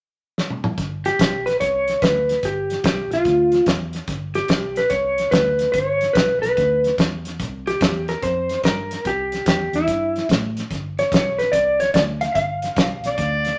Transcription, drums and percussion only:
0.38 snare
0.50 high tom
0.64 mid tom
0.78 kick, snare, closed hi-hat
1.05 snare, closed hi-hat
1.19 kick, snare, closed hi-hat
1.47 snare, closed hi-hat
1.61 kick, snare, closed hi-hat
1.88 snare, closed hi-hat
2.02 kick, snare, closed hi-hat
2.29 snare, closed hi-hat
2.43 kick, snare, closed hi-hat
2.70 snare, closed hi-hat
2.84 kick, snare, closed hi-hat
3.11 snare, closed hi-hat
3.25 kick, snare, closed hi-hat
3.52 snare, closed hi-hat
3.66 kick, snare, closed hi-hat
3.93 snare, closed hi-hat
4.08 kick, snare, closed hi-hat
4.35 snare, closed hi-hat
4.48 kick, snare, closed hi-hat
4.76 snare, closed hi-hat
4.90 kick, snare, closed hi-hat
5.18 snare, closed hi-hat
5.32 kick, snare, closed hi-hat
5.59 snare, closed hi-hat
5.74 kick, snare, closed hi-hat
6.01 snare, closed hi-hat
6.15 kick, snare, closed hi-hat
6.43 snare, closed hi-hat
6.57 kick, snare, closed hi-hat
6.84 snare, closed hi-hat
6.98 kick, snare, closed hi-hat
7.25 snare, closed hi-hat
7.40 kick, snare, closed hi-hat
7.67 snare, closed hi-hat
7.81 kick, snare, closed hi-hat
8.08 snare, closed hi-hat
8.22 kick, snare, closed hi-hat
8.49 snare, closed hi-hat
8.64 kick, snare, closed hi-hat
8.91 snare, closed hi-hat
9.05 kick, snare, closed hi-hat
9.32 snare, closed hi-hat
9.46 kick, snare, closed hi-hat
9.73 snare, closed hi-hat
9.88 kick, snare, closed hi-hat
10.16 snare, closed hi-hat
10.29 kick, snare, closed hi-hat
10.57 snare, closed hi-hat
10.71 kick, snare, closed hi-hat
10.99 snare, closed hi-hat
11.12 kick, snare, closed hi-hat
11.39 snare, closed hi-hat
11.53 kick, snare, closed hi-hat
11.80 snare, closed hi-hat
11.94 kick, snare, closed hi-hat
12.21 snare, closed hi-hat
12.35 kick, snare, closed hi-hat
12.62 snare, closed hi-hat
12.76 kick, snare, closed hi-hat
13.04 snare, closed hi-hat
13.18 kick, snare, closed hi-hat
13.45 snare, closed hi-hat

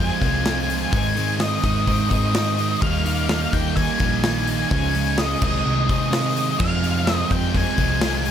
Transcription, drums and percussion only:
0.22 kick, open hi-hat
0.45 snare, open hi-hat
0.70 open hi-hat
0.93 kick, open hi-hat
1.17 open hi-hat
1.40 snare, open hi-hat
1.63 kick, open hi-hat
1.87 kick, open hi-hat
2.11 kick, open hi-hat
2.35 snare, open hi-hat
2.58 open hi-hat
2.82 kick, open hi-hat
3.06 open hi-hat
3.29 snare, open hi-hat
3.53 kick, open hi-hat
3.77 kick, open hi-hat
4.00 kick, open hi-hat
4.24 snare, open hi-hat
4.47 open hi-hat
4.71 kick, open hi-hat
4.95 open hi-hat
5.18 snare, open hi-hat
5.42 kick, crash
5.89 kick, open hi-hat
6.13 snare, open hi-hat
6.37 open hi-hat
6.60 kick, crash
6.84 open hi-hat
7.07 snare, open hi-hat
7.31 kick, open hi-hat
7.54 kick, open hi-hat
7.78 kick, open hi-hat
8.01 snare, open hi-hat
8.25 open hi-hat

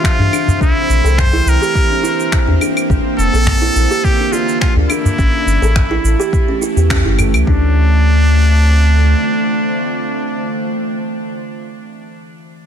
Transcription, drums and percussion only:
0.04 finger snap, kick, shaker
0.19 udu
0.33 claves, shaker
0.48 udu, shaker
0.61 kick, shaker
0.90 shaker
1.06 shaker
1.18 finger snap, kick, udu, shaker
1.47 shaker
1.63 shaker
1.75 kick, shaker
2.05 shaker
2.20 shaker
2.32 finger snap, kick, shaker
2.48 udu
2.61 claves, shaker
2.77 claves, shaker
2.90 kick, shaker
3.19 shaker
3.34 shaker
3.46 finger snap, kick, udu, shaker
3.76 shaker
3.91 shaker
4.04 kick, shaker
4.33 shaker
4.49 shaker
4.61 finger snap, kick, shaker
4.76 udu
4.90 claves, shaker
5.05 udu, shaker
5.19 kick, shaker
5.48 shaker
5.63 shaker
5.75 finger snap, kick, udu, shaker
6.05 shaker
6.21 shaker
6.33 kick, shaker
6.62 shaker
6.77 shaker
6.90 finger snap, kick, shaker
7.05 udu
7.18 udu, claves, shaker
7.34 claves, shaker
7.47 kick

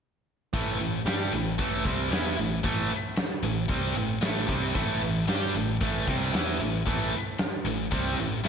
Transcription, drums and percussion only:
0.54 kick, ride
0.80 ride
1.07 snare, ride
1.33 ride
1.59 kick, ride
1.85 kick, ride
2.12 snare, ride
2.38 ride
2.64 kick, ride
2.90 ride
3.16 snare, ride
3.43 ride
3.69 kick, ride
3.96 ride
4.22 snare, ride
4.49 kick, ride
4.75 kick, ride
5.02 ride
5.28 snare, ride
5.55 ride
5.81 kick, ride
6.07 kick, ride
6.34 snare, ride
6.61 ride
6.87 kick, ride
7.13 ride
7.38 snare, ride
7.66 ride
7.92 kick, ride
8.06 snare
8.18 ride
8.45 snare

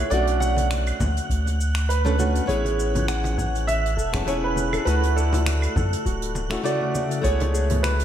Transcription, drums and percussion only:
0.11 closed hi-hat, cabasa
0.27 closed hi-hat
0.40 muted conga, cabasa
0.57 closed hi-hat, high conga, cabasa
0.71 finger snap, closed hi-hat, high conga, cabasa
0.86 closed hi-hat, cabasa, claves
1.00 kick, muted conga, high conga, low conga, cabasa
1.17 closed hi-hat, cabasa
1.30 kick, closed hi-hat, cabasa
1.46 closed hi-hat, muted conga, cabasa
1.61 cabasa
1.75 finger snap, closed hi-hat, cabasa
1.90 closed hi-hat, cabasa
2.06 muted conga, cabasa
2.19 high conga, cabasa
2.35 closed hi-hat, cabasa
2.49 kick, closed hi-hat, cabasa
2.65 closed hi-hat, muted conga
2.80 cabasa
2.95 closed hi-hat, high conga, low conga, cabasa
3.08 finger snap, closed hi-hat, high conga, cabasa
3.24 closed hi-hat, muted conga, cabasa
3.38 kick, high conga, low conga, cabasa
3.55 closed hi-hat, cabasa
3.68 closed hi-hat, muted conga, cabasa
3.85 closed hi-hat
3.97 kick, cabasa
4.14 finger snap, kick, closed hi-hat, low conga, cabasa
4.27 closed hi-hat, muted conga, cabasa
4.56 high conga, cabasa
4.73 closed hi-hat, muted conga, cabasa, claves
4.87 closed hi-hat, cabasa
5.03 closed hi-hat
5.18 cabasa
5.33 closed hi-hat, muted conga, high conga, cabasa
5.46 finger snap, closed hi-hat, high conga, cabasa
5.62 closed hi-hat, cabasa, claves
5.76 kick, muted conga, high conga, low conga, cabasa
5.93 closed hi-hat, cabasa
6.06 kick, closed hi-hat, cabasa
6.22 closed hi-hat
6.35 muted conga, cabasa
6.51 finger snap, closed hi-hat, cabasa
6.65 closed hi-hat, cabasa
6.81 muted conga
6.95 high conga, cabasa
7.11 closed hi-hat, cabasa
7.24 kick, closed hi-hat, cabasa
7.40 closed hi-hat, muted conga
7.55 cabasa
7.70 closed hi-hat, high conga, low conga, cabasa
7.84 finger snap, closed hi-hat, muted conga, high conga, cabasa
7.99 closed hi-hat, cabasa

